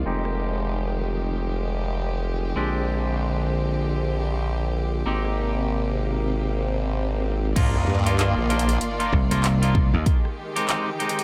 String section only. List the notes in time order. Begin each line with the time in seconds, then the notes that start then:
Already playing: D#3
0.06 G#3 G4
2.57 D3 C4
5.06 C3 A#3
7.55 D#3 A#3 F4 D5
10.06 G#3 G4